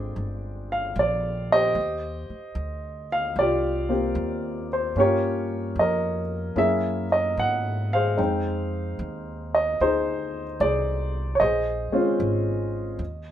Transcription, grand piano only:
Already playing: G#3 C4 D4 F4 G#4 D5 G5
0.72 F5
0.99 D5
1.52 G4 C5 D#5
3.12 F5
3.39 F4 G4 D5
3.89 A#3 C4 F4 G4
4.73 C5
4.97 A#3 C#4 F4 G4 C#5
5.01 F4 A#4
5.79 A#4 D#5
6.56 A#3 C#4 E4 G#4 A#4 E5
7.12 D#5
7.39 F#5
7.93 G#4 C5 F5
8.17 G#3 C4 D#4 G5
9.55 D#5
9.81 D#4 G#4 C5
10.61 G#4 D5
11.35 C#5
11.40 G#4 C5 D#5
11.92 G#3 C4 C#4 F4

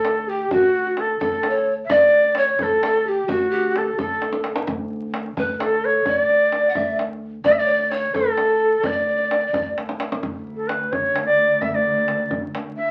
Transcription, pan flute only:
Already playing: A4
0.28 G4
0.52 F#4
1.21 A4
1.49 C#5
1.90 D5
2.37 C#5
2.61 A4
2.84 A4
3.07 G4
3.28 F#4
3.51 G4
3.99 A4
5.38 B4
5.61 A4
6.06 D5
6.69 F#5
6.75 E5
7.45 D5
7.59 D5
7.66 C#5
7.74 D5
7.91 C#5
8.15 A4
8.83 D5
8.92 D5
8.98 D5
9.08 D5
9.16 D5
9.23 D5
9.31 D5
9.40 D5
9.47 D5
9.54 D5
9.61 D5

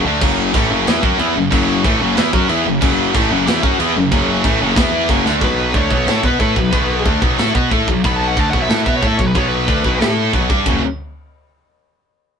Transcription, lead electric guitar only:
5.45 B4
5.78 C#5
6.27 B4
6.42 B4
8.05 B5
8.16 A5
8.28 F#5
8.39 A5
8.51 F#5
8.63 E5
8.73 F#5
8.84 E5
8.96 C#5
9.07 E5
9.17 C#5
9.27 B4
9.37 C#5
9.48 B4

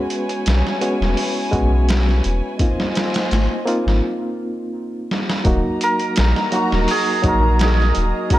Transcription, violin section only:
Already playing: E4 B4 C#5 G#5
2.60 F4 C5 D#5 G#5
5.46 F#4 A#4 D#5 A#5
8.31 F#4 F#5 G#5

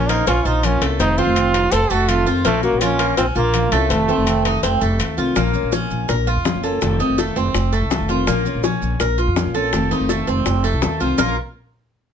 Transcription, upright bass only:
Already playing: A#1
0.27 A#1
0.45 A#1
0.81 C2
0.99 F1
1.26 F1
1.72 F1
1.90 F1
2.26 F2
2.45 A#1
2.72 A#1
3.17 A#1
3.35 A#1
3.72 C2
3.90 F1
4.17 F1
4.63 F1
4.81 F1
4.99 D#2
5.18 C2
5.36 A#1
5.63 A#1
5.91 A#1
6.09 A#1
6.36 F2
6.55 F#1
6.82 F1
7.09 F1
7.36 F1
7.54 F1
7.81 C2
8.00 F1
8.27 A#1
8.54 A#1
8.82 A#1
9.00 A#1
9.27 F2
9.46 A#1
9.73 F1
10.00 F1
10.27 F1
10.46 F1
10.73 C2
10.82 D#2
11.00 C2
11.18 A#1

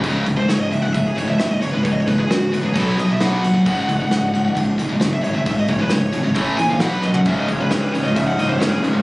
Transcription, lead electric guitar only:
0.37 C5
0.49 C#5
0.60 D#5
0.72 E5
0.82 F#5
0.94 E5
1.06 G#4
1.17 C#5
1.29 E5
1.39 E5
1.50 D#5
1.61 C#5
1.72 B4
1.84 C#5
1.91 D#5
2.00 C#5
2.07 B4
2.19 G#4
2.30 F#4
2.53 B4
2.66 G#4
2.76 A4
2.88 C#5
3.00 D#5
3.12 E5
3.23 F#5
5.13 E5
5.24 C#5
5.35 E5
5.47 E5
5.59 D#5
5.71 C#5
5.81 B4
5.91 C#5
6.57 G#5
6.70 F5
6.81 F#5
6.93 B4
7.05 D#5
7.15 F#5
7.26 E5
7.39 D#5
7.49 C#5
7.60 B4
7.70 C#5
7.82 B4
7.92 C#5
8.04 D#5
8.16 E5
8.27 F#5
8.39 D#5
8.48 C5
8.59 C#5
8.70 G#4

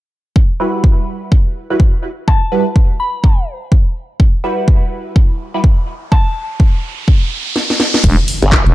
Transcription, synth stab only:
0.60 G3 E4 F#4 B4
1.70 G3 E4 F#4 B4
2.52 G3 E4 F#4 B4
4.44 G3 E4 F#4 B4
5.54 G3 E4 F#4 B4

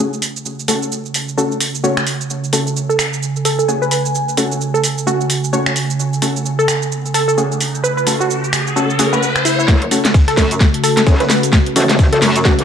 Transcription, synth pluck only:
2.89 A4
3.45 A4
3.59 A4
3.82 B4
3.91 B4
4.74 A4
5.07 F#4
6.59 A4
7.14 A4
7.28 A4
7.84 B4
7.97 B4
8.20 F#4
9.45 E4
9.59 E4
10.28 A4
10.84 A4
10.97 A4
11.20 B4
11.30 B4
12.13 A4
12.45 F#4

